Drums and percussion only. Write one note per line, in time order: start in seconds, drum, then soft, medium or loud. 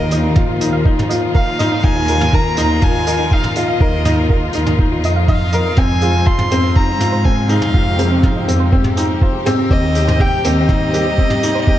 0.11 closed hi-hat medium
0.36 kick loud
0.36 mid tom medium
0.61 closed hi-hat medium
0.85 kick loud
0.99 mid tom medium
1.10 closed hi-hat medium
1.35 kick loud
1.59 closed hi-hat medium
1.59 mid tom medium
1.84 kick loud
2.08 closed hi-hat medium
2.21 mid tom medium
2.33 kick loud
2.57 closed hi-hat medium
2.82 kick loud
2.82 mid tom medium
3.07 closed hi-hat medium
3.31 kick loud
3.44 mid tom medium
3.56 closed hi-hat medium
3.81 kick loud
4.05 closed hi-hat medium
4.05 mid tom medium
4.30 kick loud
4.53 closed hi-hat medium
4.66 mid tom medium
4.79 kick loud
5.04 closed hi-hat medium
5.28 kick loud
5.28 mid tom medium
5.52 closed hi-hat medium
5.77 kick loud
5.77 mid tom medium
6.01 closed hi-hat medium
6.27 kick loud
6.39 mid tom medium
6.51 closed hi-hat medium
6.76 kick loud
7.00 closed hi-hat medium
7.00 mid tom medium
7.25 kick loud
7.49 closed hi-hat medium
7.62 mid tom medium
7.74 kick loud
7.99 closed hi-hat medium
8.23 kick loud
8.23 mid tom medium
8.48 closed hi-hat medium
8.72 kick loud
8.84 mid tom medium
8.97 closed hi-hat medium
9.21 kick medium
9.46 closed hi-hat medium
9.46 mid tom medium
9.71 kick loud
9.95 closed hi-hat medium
10.08 mid tom medium
10.20 kick loud
10.44 closed hi-hat medium
10.69 kick loud
10.69 mid tom medium
10.94 closed hi-hat medium
11.18 kick medium
11.30 mid tom medium
11.43 closed hi-hat medium
11.67 kick loud